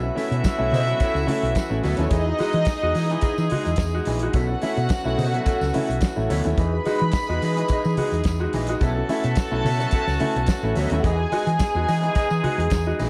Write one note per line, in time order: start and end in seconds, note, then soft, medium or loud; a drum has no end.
0.00 4.31 E3 medium
0.00 2.10 A3 medium
0.00 11.00 B3 medium
0.00 2.10 C#4 medium
0.00 0.09 C#4 soft
0.00 1.74 E4 loud
0.00 0.08 E4 soft
0.00 2.10 F#4 medium
0.00 1.75 E5 loud
0.00 muted clean electric guitar stroke soft
0.15 0.30 A3 medium
0.15 0.30 C#4 medium
0.15 0.30 E4 medium
0.15 0.32 A4 medium
0.15 0.32 C#5 medium
0.15 0.31 E5 medium
0.15 open hi-hat soft
0.15 tambourine soft
0.15 muted conga medium
0.31 0.41 B2 medium
0.31 0.44 A4 medium
0.31 0.44 C#5 medium
0.31 0.44 E5 medium
0.31 closed hi-hat soft
0.44 muted clean electric guitar stroke soft
0.44 kick loud
0.44 snare loud
0.44 closed hi-hat medium
0.44 tambourine medium
0.44 high conga medium
0.58 0.69 B1 medium
0.58 0.71 A3 medium
0.58 0.71 C#4 medium
0.58 0.71 E4 medium
0.72 0.92 B2 loud
0.72 0.87 A4 medium
0.72 0.86 C#5 medium
0.72 0.86 E5 medium
0.72 open hi-hat medium
0.72 tambourine medium
0.72 low conga medium
0.87 0.99 B2 medium
0.87 0.99 F#3 medium
0.87 0.99 A4 medium
0.87 1.00 C#5 medium
0.87 closed hi-hat soft
0.87 tambourine soft
1.00 1.21 A4 medium
1.00 1.16 C#5 medium
1.00 1.15 E5 medium
1.00 kick loud
1.00 closed hi-hat medium
1.00 tambourine medium
1.00 muted conga medium
1.15 1.24 C#2 medium
1.15 muted clean electric guitar stroke soft
1.15 tambourine medium
1.27 1.41 A3 medium
1.27 1.41 C#4 medium
1.27 1.42 E4 medium
1.27 open hi-hat medium
1.27 muted conga medium
1.27 low conga medium
1.43 1.52 B1 medium
1.43 1.55 A4 soft
1.43 1.55 C#5 medium
1.43 1.56 E5 medium
1.43 closed hi-hat soft
1.55 muted clean electric guitar stroke soft
1.55 kick loud
1.55 snare loud
1.55 closed hi-hat medium
1.55 tambourine medium
1.55 high conga medium
1.70 1.80 A1 medium
1.70 1.82 A3 medium
1.70 1.83 C#4 medium
1.70 1.83 E4 medium
1.70 muted clean electric guitar stroke soft
1.83 1.95 D2 medium
1.83 1.98 B2 medium
1.83 1.98 F#3 medium
1.83 1.91 G#3 medium
1.83 1.91 G#4 medium
1.83 2.04 A4 medium
1.83 1.97 C#5 medium
1.83 1.96 E5 medium
1.83 open hi-hat medium
1.83 tambourine medium
1.83 high conga medium
1.90 1.98 A3 medium
1.90 1.98 A4 medium
1.97 2.08 D#2 medium
1.97 2.11 A3 medium
1.97 2.04 B3 medium
1.97 2.11 C#4 medium
1.97 2.11 E4 medium
1.97 2.04 B4 medium
1.97 muted clean electric guitar stroke soft
1.97 closed hi-hat soft
1.97 tambourine soft
2.04 2.11 C#4 medium
2.04 2.11 C#5 medium
2.10 2.32 E2 medium
2.10 2.26 E3 medium
2.10 4.33 G#3 medium
2.10 4.02 D#4 loud
2.10 4.33 D#4 medium
2.10 2.32 E4 medium
2.10 2.26 G#4 medium
2.10 4.33 G#4 medium
2.10 4.02 D#5 loud
2.10 2.25 D#5 medium
2.10 kick loud
2.10 closed hi-hat medium
2.10 tambourine soft
2.10 muted conga soft
2.26 2.32 D#4 soft
2.26 2.32 F#4 soft
2.26 muted clean electric guitar stroke soft
2.38 2.53 G#3 medium
2.38 2.53 D#4 medium
2.38 2.54 E4 medium
2.38 2.53 F#4 medium
2.38 2.53 G#4 medium
2.38 2.53 D#5 medium
2.38 open hi-hat soft
2.38 tambourine soft
2.38 muted conga medium
2.53 2.64 E3 loud
2.53 2.66 E4 soft
2.53 2.66 G#4 medium
2.53 2.67 D#5 medium
2.53 closed hi-hat soft
2.65 muted clean electric guitar stroke soft
2.65 kick loud
2.65 snare loud
2.65 closed hi-hat medium
2.65 tambourine medium
2.65 high conga medium
2.82 2.92 E2 medium
2.82 2.94 G#3 medium
2.82 2.94 D#4 medium
2.82 2.95 F#4 medium
2.82 muted clean electric guitar stroke soft
2.95 3.15 E3 medium
2.95 3.09 E4 medium
2.95 3.08 G#4 medium
2.95 3.07 D#5 medium
2.95 open hi-hat medium
2.95 tambourine medium
3.08 3.23 E3 medium
3.08 3.20 E4 medium
3.08 3.21 G#4 medium
3.08 3.22 D#5 medium
3.08 closed hi-hat soft
3.08 tambourine soft
3.21 3.43 E4 medium
3.21 3.36 G#4 medium
3.21 3.36 D#5 medium
3.21 muted fingered electric bass stroke soft
3.21 kick loud
3.21 closed hi-hat medium
3.21 tambourine medium
3.21 muted conga medium
3.37 3.48 E3 medium
3.37 muted clean electric guitar stroke soft
3.37 tambourine medium
3.50 3.65 G#3 medium
3.50 3.65 D#4 medium
3.50 3.65 F#4 medium
3.50 muted clean electric guitar stroke soft
3.50 open hi-hat medium
3.50 muted conga medium
3.50 low conga medium
3.64 3.76 E2 medium
3.64 3.80 E4 medium
3.64 3.80 G#4 medium
3.64 3.80 D#5 medium
3.64 closed hi-hat soft
3.64 tambourine soft
3.76 3.99 E2 medium
3.76 kick loud
3.76 snare loud
3.76 closed hi-hat medium
3.76 tambourine medium
3.76 high conga medium
3.93 4.06 G#3 medium
3.93 4.06 D#4 medium
3.93 4.06 F#4 medium
3.93 muted clean electric guitar stroke soft
4.05 4.27 A#1 medium
4.05 4.21 E3 medium
4.05 4.27 E4 medium
4.05 4.20 G#4 medium
4.05 4.20 D#5 medium
4.05 open hi-hat medium
4.05 tambourine medium
4.05 high conga medium
4.19 4.34 G#3 medium
4.19 4.34 D#4 medium
4.19 4.34 F#4 medium
4.19 muted clean electric guitar stroke soft
4.19 closed hi-hat soft
4.33 4.55 B1 medium
4.33 4.49 B2 medium
4.33 11.00 E3 medium
4.33 4.49 F#3 medium
4.33 6.56 A3 medium
4.33 6.56 C#4 medium
4.33 6.25 F#4 loud
4.33 6.56 F#4 medium
4.33 4.55 A4 medium
4.33 4.49 C#5 medium
4.33 4.48 E5 medium
4.33 6.25 F#5 loud
4.33 kick loud
4.33 closed hi-hat medium
4.33 tambourine medium
4.49 4.55 C#4 soft
4.49 4.55 E4 soft
4.49 muted clean electric guitar stroke soft
4.62 4.76 A3 medium
4.62 4.76 C#4 medium
4.62 4.76 E4 medium
4.62 4.77 A4 medium
4.62 4.76 C#5 medium
4.62 4.76 E5 medium
4.62 open hi-hat medium
4.62 tambourine soft
4.62 muted conga medium
4.77 4.87 B2 medium
4.77 4.89 A4 soft
4.77 4.89 C#5 medium
4.77 4.90 E5 medium
4.77 closed hi-hat soft
4.77 tambourine soft
4.89 muted clean electric guitar stroke soft
4.89 kick loud
4.89 snare loud
4.89 closed hi-hat medium
4.89 tambourine loud
4.89 high conga medium
5.04 5.15 B1 medium
5.04 5.17 A3 medium
5.04 5.17 C#4 medium
5.04 5.17 E4 medium
5.17 5.38 B2 medium
5.17 5.33 A4 medium
5.17 5.33 C#5 medium
5.17 5.32 E5 medium
5.17 open hi-hat medium
5.17 tambourine medium
5.17 low conga loud
5.33 5.46 B2 medium
5.33 5.45 F#3 medium
5.33 5.44 A4 soft
5.33 5.45 C#5 soft
5.33 5.46 E5 medium
5.33 closed hi-hat soft
5.33 tambourine soft
5.45 5.66 A4 medium
5.45 5.60 C#5 medium
5.45 5.59 E5 medium
5.45 kick loud
5.45 closed hi-hat medium
5.45 tambourine medium
5.45 muted conga medium
5.60 5.71 C#2 medium
5.60 muted clean electric guitar stroke soft
5.60 snare soft
5.60 tambourine medium
5.73 5.88 A3 medium
5.73 5.88 C#4 medium
5.73 5.88 E4 medium
5.73 muted clean electric guitar stroke soft
5.73 open hi-hat medium
5.73 muted conga medium
5.73 low conga medium
5.88 5.99 B1 medium
5.88 6.01 A4 soft
5.88 6.01 C#5 medium
5.88 6.02 E5 medium
5.88 closed hi-hat soft
5.88 tambourine soft
6.01 muted clean electric guitar stroke soft
6.01 kick medium
6.01 snare loud
6.01 closed hi-hat medium
6.01 tambourine medium
6.01 high conga medium
6.16 6.26 A1 medium
6.16 6.29 A3 medium
6.16 6.29 C#4 medium
6.16 6.29 E4 medium
6.29 6.41 D2 medium
6.29 6.43 B2 medium
6.29 6.44 F#3 medium
6.29 6.50 A4 medium
6.29 6.45 C#5 medium
6.29 6.44 E5 medium
6.29 open hi-hat medium
6.29 tambourine medium
6.29 high conga medium
6.44 6.55 D#2 medium
6.44 6.57 A3 medium
6.44 6.57 C#4 medium
6.44 6.57 E4 medium
6.44 muted clean electric guitar stroke soft
6.44 closed hi-hat soft
6.44 tambourine soft
6.57 6.78 E2 medium
6.57 6.72 E3 medium
6.57 8.80 G#3 medium
6.57 8.79 D#4 medium
6.57 6.78 G#4 medium
6.57 8.79 G#4 medium
6.57 8.49 B4 loud
6.57 6.74 B4 medium
6.57 6.73 D#5 medium
6.57 8.49 B5 loud
6.57 kick loud
6.57 closed hi-hat medium
6.57 tambourine soft
6.73 6.78 D#4 soft
6.73 6.78 F#4 soft
6.73 muted clean electric guitar stroke soft
6.85 6.99 G#3 medium
6.85 6.99 D#4 medium
6.85 7.00 F#4 medium
6.85 7.02 G#4 medium
6.85 7.01 B4 medium
6.85 7.01 D#5 medium
6.85 open hi-hat medium
6.85 tambourine soft
6.85 muted conga medium
6.99 7.11 E3 loud
6.99 7.14 G#4 soft
6.99 7.15 B4 medium
6.99 7.15 D#5 medium
6.99 closed hi-hat soft
7.12 kick loud
7.12 snare loud
7.12 closed hi-hat medium
7.12 tambourine medium
7.12 high conga medium
7.16 muted clean electric guitar stroke soft
7.29 7.38 E2 medium
7.29 7.41 G#3 medium
7.29 7.41 D#4 medium
7.29 7.41 F#4 medium
7.29 muted clean electric guitar stroke soft
7.42 7.62 E3 medium
7.42 7.58 G#4 medium
7.42 7.58 B4 medium
7.42 7.57 D#5 medium
7.42 open hi-hat medium
7.42 tambourine medium
7.56 7.69 E3 medium
7.56 7.70 G#4 medium
7.56 7.71 B4 medium
7.56 7.71 D#5 medium
7.56 closed hi-hat soft
7.56 tambourine soft
7.68 7.91 G#4 medium
7.68 7.85 B4 medium
7.68 muted fingered electric bass stroke soft
7.68 kick loud
7.68 closed hi-hat medium
7.68 tambourine medium
7.68 muted conga medium
7.73 7.85 D#5 medium
7.84 7.94 E3 loud
7.84 muted clean electric guitar stroke soft
7.84 tambourine medium
7.97 8.11 G#3 medium
7.97 8.11 D#4 medium
7.97 8.11 F#4 medium
7.97 muted clean electric guitar stroke soft
7.97 open hi-hat medium
7.97 muted conga medium
7.97 low conga medium
8.11 8.22 E2 medium
8.11 8.26 G#4 soft
8.11 8.27 B4 soft
8.11 8.27 D#5 medium
8.11 closed hi-hat soft
8.11 tambourine soft
8.24 8.46 E2 medium
8.24 kick loud
8.24 snare loud
8.24 closed hi-hat medium
8.24 tambourine medium
8.24 high conga medium
8.40 8.52 G#3 medium
8.40 8.52 D#4 medium
8.40 8.52 F#4 medium
8.40 muted clean electric guitar stroke soft
8.53 8.74 A#1 medium
8.53 8.67 E3 medium
8.53 8.74 G#4 medium
8.53 8.69 B4 medium
8.53 8.68 D#5 medium
8.53 open hi-hat medium
8.53 tambourine medium
8.53 high conga medium
8.67 8.80 G#3 medium
8.67 8.80 D#4 medium
8.67 8.81 F#4 medium
8.67 muted clean electric guitar stroke soft
8.67 closed hi-hat medium
8.67 tambourine soft
8.80 9.01 B1 loud
8.80 8.95 B2 medium
8.80 8.95 F#3 medium
8.80 11.03 A3 medium
8.80 11.03 C#4 medium
8.80 11.02 F#4 medium
8.80 10.67 A4 loud
8.80 9.02 A4 medium
8.80 8.98 C#5 medium
8.80 8.97 E5 medium
8.80 10.67 A5 loud
8.80 kick loud
8.80 closed hi-hat medium
8.80 tambourine soft
8.80 muted conga soft
8.96 9.01 C#4 soft
8.96 9.01 E4 soft
8.96 muted clean electric guitar stroke medium
9.09 9.23 A3 medium
9.09 9.23 C#4 medium
9.09 9.23 E4 medium
9.09 9.25 A4 medium
9.09 9.24 C#5 medium
9.09 9.23 E5 medium
9.09 open hi-hat medium
9.09 tambourine medium
9.09 muted conga medium
9.24 9.33 B2 medium
9.24 9.37 A4 soft
9.24 9.37 C#5 medium
9.24 9.38 E5 medium
9.24 closed hi-hat soft
9.24 tambourine soft
9.35 muted clean electric guitar stroke soft
9.35 kick loud
9.35 snare loud
9.35 closed hi-hat medium
9.35 tambourine loud
9.35 high conga medium
9.51 9.61 B1 medium
9.51 9.64 A3 medium
9.51 9.64 C#4 medium
9.51 9.64 E4 medium
9.51 muted clean electric guitar stroke soft
9.64 9.85 B2 loud
9.64 9.80 A4 medium
9.64 9.80 C#5 medium
9.64 9.79 E5 medium
9.64 open hi-hat medium
9.64 tambourine medium
9.64 low conga medium
9.79 9.92 B2 medium
9.79 9.92 F#3 medium
9.79 9.92 A4 medium
9.79 9.93 C#5 medium
9.79 9.93 E5 medium
9.79 closed hi-hat soft
9.79 tambourine soft
9.91 10.13 A4 loud
9.91 10.08 C#5 medium
9.91 10.07 E5 medium
9.91 kick loud
9.91 closed hi-hat medium
9.91 tambourine medium
9.91 muted conga soft
10.07 10.17 C#2 medium
10.07 muted clean electric guitar stroke soft
10.07 snare soft
10.07 tambourine medium
10.20 10.34 A3 medium
10.20 10.34 C#4 medium
10.20 10.34 E4 medium
10.20 open hi-hat medium
10.20 muted conga medium
10.20 low conga medium
10.36 10.45 B1 medium
10.36 10.49 A4 medium
10.36 10.49 C#5 medium
10.36 10.49 E5 medium
10.36 closed hi-hat soft
10.46 muted clean electric guitar stroke soft
10.46 kick loud
10.46 snare loud
10.46 closed hi-hat medium
10.46 tambourine loud
10.46 high conga medium
10.63 10.72 A1 medium
10.63 10.75 A3 medium
10.63 10.76 C#4 medium
10.63 10.76 E4 medium
10.75 10.87 D2 medium
10.75 10.91 B2 medium
10.75 10.91 F#3 medium
10.75 10.84 C#4 medium
10.75 10.97 A4 medium
10.75 10.84 C#5 medium
10.75 10.91 C#5 medium
10.75 10.90 E5 medium
10.75 open hi-hat medium
10.75 tambourine medium
10.75 high conga medium
10.84 10.91 D#4 medium
10.84 10.91 D#5 medium
10.90 11.00 D#2 medium
10.90 11.04 A3 medium
10.90 11.04 C#4 medium
10.90 11.04 E4 medium
10.90 10.98 E4 medium
10.90 10.99 E5 medium
10.90 muted clean electric guitar stroke soft
10.90 closed hi-hat medium
10.90 tambourine soft
10.99 11.05 F#4 medium
10.99 11.05 F#5 medium
11.03 11.24 E2 medium
11.03 13.10 E3 medium
11.03 11.18 E3 medium
11.03 13.10 G#3 medium
11.03 13.10 B3 medium
11.03 13.10 D#4 medium
11.03 13.10 G#4 loud
11.03 11.24 G#4 medium
11.03 12.97 G#4 loud
11.03 11.18 B4 medium
11.03 11.17 D#5 loud
11.03 12.96 G#5 loud
11.03 kick loud
11.03 closed hi-hat medium
11.03 tambourine soft
11.03 muted conga soft
11.19 11.25 D#4 soft
11.19 11.25 F#4 soft
11.19 muted clean electric guitar stroke medium
11.32 11.46 G#3 medium
11.32 11.46 D#4 medium
11.32 11.46 F#4 medium
11.32 11.47 G#4 medium
11.32 11.47 B4 medium
11.32 11.46 D#5 medium
11.32 open hi-hat medium
11.32 tambourine medium
11.32 muted conga soft
11.47 11.56 E3 medium
11.47 11.59 G#4 medium
11.47 11.59 B4 medium
11.47 11.60 D#5 medium
11.47 closed hi-hat soft
11.47 tambourine soft
11.59 muted clean electric guitar stroke soft
11.59 kick loud
11.59 snare loud
11.59 closed hi-hat medium
11.59 tambourine loud
11.59 high conga medium
11.75 11.84 E2 medium
11.75 11.87 G#3 medium
11.75 11.88 D#4 medium
11.75 11.88 F#4 medium
11.75 muted clean electric guitar stroke soft
11.87 12.09 E3 loud
11.87 12.03 G#4 medium
11.87 12.02 B4 medium
11.87 12.01 D#5 loud
11.87 open hi-hat medium
11.87 tambourine medium
12.03 12.15 E3 medium
12.03 12.14 G#4 soft
12.03 12.14 B4 medium
12.03 12.15 D#5 medium
12.03 closed hi-hat soft
12.03 tambourine soft
12.15 12.36 G#4 medium
12.15 12.31 B4 medium
12.15 12.30 D#5 loud
12.15 muted fingered electric bass stroke soft
12.15 kick loud
12.15 closed hi-hat medium
12.15 tambourine medium
12.15 muted conga medium
12.30 12.40 E3 medium
12.30 muted clean electric guitar stroke soft
12.30 tambourine medium
12.43 12.57 G#3 medium
12.43 12.57 D#4 medium
12.43 12.58 F#4 medium
12.43 muted clean electric guitar stroke soft
12.43 open hi-hat medium
12.43 muted conga medium
12.43 low conga medium
12.58 12.68 E2 medium
12.58 12.70 G#4 medium
12.58 12.70 B4 medium
12.58 12.70 D#5 medium
12.58 closed hi-hat soft
12.70 12.92 E2 medium
12.70 muted clean electric guitar stroke soft
12.70 kick loud
12.70 snare loud
12.70 closed hi-hat medium
12.70 tambourine loud
12.70 high conga medium
12.86 12.99 G#3 medium
12.86 12.99 D#4 medium
12.86 12.99 F#4 medium
12.86 muted clean electric guitar stroke soft
12.99 13.10 A#1 medium
12.99 13.10 E3 medium
12.99 13.10 G#4 medium
12.99 13.10 B4 medium
12.99 13.10 D#5 medium
12.99 open hi-hat medium
12.99 tambourine medium
12.99 high conga medium